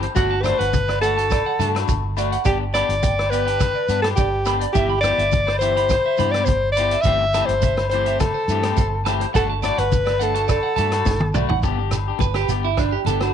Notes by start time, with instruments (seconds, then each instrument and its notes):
0.03 clean electric guitar C5, closed hi-hat
0.15 fingered electric bass G1, clean electric guitar A3 D4 F#4 F#5, alto saxophone F#4, kick, closed hi-hat, muted conga, shekere
0.31 clean electric guitar A5
0.43 clean electric guitar A3 D4 F#4 D5, alto saxophone C5, cross-stick, closed hi-hat, muted conga, low conga, low agogo, shekere
0.59 fingered electric bass G1, alto saxophone B4, clean electric guitar F#5, closed hi-hat
0.73 kick, closed hi-hat, high conga, shekere
0.88 clean electric guitar D5, cross-stick, low agogo
1.01 clean electric guitar A3 D4 F#4 F#5, alto saxophone A4, closed hi-hat, shekere
1.15 clean electric guitar D4 F#4 A5, closed hi-hat
1.30 clean electric guitar D5, kick, cross-stick, closed hi-hat, low agogo, shekere
1.46 clean electric guitar F#5
1.59 fingered electric bass G2, clean electric guitar A3 D4 F#4 A5, closed hi-hat, high conga, shekere
1.75 clean electric guitar D4 F#4, cross-stick, closed hi-hat, low agogo
1.88 fingered electric bass G1, kick, closed hi-hat, high conga, shekere
2.17 clean electric guitar A3 F#4 D5, muted clean electric guitar stroke, closed hi-hat, muted conga, low agogo, shekere
2.32 clean electric guitar F#5, closed hi-hat
2.45 fingered electric bass G1, clean electric guitar B3 D4 G4 D5, alto saxophone G4, kick, closed hi-hat, shekere
2.74 clean electric guitar B3 D4 G4 B5, alto saxophone D5, cross-stick, closed hi-hat, muted conga, low agogo, shekere
2.89 fingered electric bass G1, closed hi-hat
3.03 clean electric guitar G5, kick, closed hi-hat, high conga, shekere
3.19 cross-stick, low agogo
3.30 clean electric guitar B3 G4 D5, alto saxophone B4, closed hi-hat, shekere
3.46 clean electric guitar D4 G4 G5, closed hi-hat
3.60 kick, cross-stick, closed hi-hat, muted conga, high conga, low agogo, shekere
3.75 clean electric guitar D5
3.89 fingered electric bass G2, clean electric guitar B3 D4, muted clean electric guitar stroke, closed hi-hat, shekere
4.02 clean electric guitar D4 G4, alto saxophone A4, cross-stick, closed hi-hat, low agogo
4.16 fingered electric bass G1, alto saxophone G4, clean electric guitar D5, kick, closed hi-hat, high conga, shekere
4.45 clean electric guitar B3 D4 G4 B5, cross-stick, closed hi-hat, muted conga, low agogo, shekere
4.61 clean electric guitar D5, closed hi-hat
4.73 fingered electric bass G1, clean electric guitar E3 B3 E4 G4 E5, alto saxophone G4, kick, closed hi-hat, shekere
4.89 clean electric guitar B5
5.01 clean electric guitar B3 C5, alto saxophone D5, cross-stick, closed hi-hat, muted conga, low conga, low agogo, shekere
5.05 clean electric guitar E4 G4
5.18 fingered electric bass G1, clean electric guitar E5, closed hi-hat
5.32 kick, closed hi-hat, high conga, shekere
5.47 clean electric guitar C5, cross-stick, low agogo
5.59 clean electric guitar E3 B3 G4 E5, alto saxophone C5, closed hi-hat, shekere
5.76 clean electric guitar B3 E4 G4 B5, closed hi-hat
5.89 clean electric guitar C5, kick, cross-stick, closed hi-hat, low agogo, shekere
6.06 clean electric guitar E5
6.17 fingered electric bass G2, clean electric guitar E3 B3 E4 G4 B5, closed hi-hat, high conga, shekere
6.31 clean electric guitar G4, alto saxophone D5, muted clean electric guitar stroke, cross-stick, closed hi-hat, low agogo
6.36 clean electric guitar B3
6.45 fingered electric bass G1, alto saxophone C5, kick, closed hi-hat, high conga, shekere
6.72 alto saxophone D5, shekere
6.77 clean electric guitar B3 E4 G4 C5, muted clean electric guitar stroke, closed hi-hat, muted conga, low agogo
6.91 clean electric guitar E5, closed hi-hat
7.02 fingered electric bass G1, alto saxophone E5, kick, closed hi-hat, shekere
7.06 clean electric guitar E3 A3 C4 G4 C5
7.34 clean electric guitar E3 A3 C4 G4 A5, cross-stick, closed hi-hat, muted conga, low agogo, shekere
7.46 fingered electric bass G1, alto saxophone C5, closed hi-hat
7.62 clean electric guitar E5, kick, closed hi-hat, high conga, shekere
7.77 cross-stick, low agogo
7.89 clean electric guitar E3 C5, alto saxophone C5, closed hi-hat
7.94 clean electric guitar A3 C4 G4
8.06 clean electric guitar A3 C4 G4 E5, closed hi-hat
8.20 alto saxophone A4, kick, cross-stick, closed hi-hat, muted conga, high conga, low agogo, shekere
8.34 clean electric guitar C5
8.48 fingered electric bass G2, clean electric guitar E3 A3 C4 G4, closed hi-hat, shekere
8.63 clean electric guitar A3 C4 G4, cross-stick, closed hi-hat, low agogo
8.77 fingered electric bass G1, clean electric guitar C5, kick, closed hi-hat, high conga, shekere
9.05 clean electric guitar E3 A3 C4 G4 A5, cross-stick, closed hi-hat, muted conga, low agogo, shekere
9.20 clean electric guitar C5, closed hi-hat
9.34 fingered electric bass G1, clean electric guitar A3 D4 F#4 F#5, alto saxophone A4, kick, closed hi-hat, shekere
9.50 clean electric guitar A5
9.62 clean electric guitar A3 D4 F#4 D5, alto saxophone D5, cross-stick, closed hi-hat, muted conga, low conga, low agogo, shekere
9.78 fingered electric bass G1, alto saxophone B4, clean electric guitar F#5, closed hi-hat
9.92 kick, closed hi-hat, high conga, shekere
10.06 clean electric guitar D5, cross-stick, low agogo
10.19 clean electric guitar A3 D4 F#5, alto saxophone A4, closed hi-hat, shekere
10.34 clean electric guitar D4 F#4 A5, closed hi-hat
10.48 alto saxophone A4, clean electric guitar D5, kick, cross-stick, closed hi-hat, low agogo, shekere
10.63 clean electric guitar F#5
10.76 fingered electric bass G2, clean electric guitar A3 D4 F#4 A5, closed hi-hat, high conga, low conga, shekere
10.92 clean electric guitar D4 F#4, cross-stick, closed hi-hat, low agogo
11.05 fingered electric bass G1, kick, snare, high conga, shekere
11.20 high tom
11.34 fingered electric bass B1, clean electric guitar A3 F#4 D5, muted clean electric guitar stroke, mid tom, low agogo, shekere
11.49 fingered electric bass A1, clean electric guitar F#5, floor tom
11.62 fingered electric bass G1, clean electric guitar B3 D4 G4, kick, muted conga, shekere
11.79 clean electric guitar D4 G4
11.91 cross-stick, closed hi-hat, low agogo, shekere
12.08 clean electric guitar D4 G4
12.19 fingered electric bass G1, clean electric guitar B4, kick, high conga, shekere
12.34 clean electric guitar G4, cross-stick, low agogo
12.49 fingered electric bass G1, clean electric guitar B3 G4, closed hi-hat, shekere
12.65 clean electric guitar E4
12.77 clean electric guitar D4, kick, cross-stick, muted conga, low agogo, shekere
12.92 clean electric guitar G4
13.05 fingered electric bass G1, clean electric guitar B3 D4 G4 A4, closed hi-hat, muted conga, high conga, shekere
13.21 clean electric guitar D4 F#4, cross-stick, low agogo, shekere